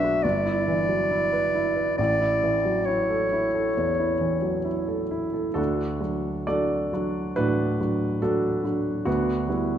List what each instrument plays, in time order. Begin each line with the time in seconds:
Already playing: grand piano B1 D4 E4 F#4, clarinet E5
0.04 grand piano F#4
0.23 grand piano G1, clarinet D5
0.45 grand piano E4
0.68 grand piano E3
0.89 grand piano F#3
1.11 grand piano E4
1.33 grand piano B4
1.54 grand piano E4
1.76 grand piano B4
1.98 grand piano A1, clarinet D5
2.20 grand piano E4
2.43 grand piano E3
2.65 grand piano F#3
2.85 grand piano E4, clarinet C#5
3.10 grand piano A4
3.33 grand piano E4
3.55 grand piano A4
3.77 grand piano E2
3.99 grand piano E4
4.21 grand piano E3
4.42 grand piano F#3
4.65 grand piano E4
4.88 grand piano A4
5.11 grand piano E4
5.33 grand piano A4
5.54 grand piano D2 D4 F#4 A4
6.01 grand piano F#3 D4 F#4
6.47 grand piano F#3 D4 F#4 A4 D5
6.93 grand piano F#3 D4 F#4
7.36 grand piano A2 D4 F#4 B4
7.81 grand piano F#3 D4 F#4
8.22 grand piano F#3 D4 F#4 A4
8.64 grand piano F#3 D4 F#4
9.05 grand piano D2 B3 D4 F#4
9.48 grand piano G3 B3 E4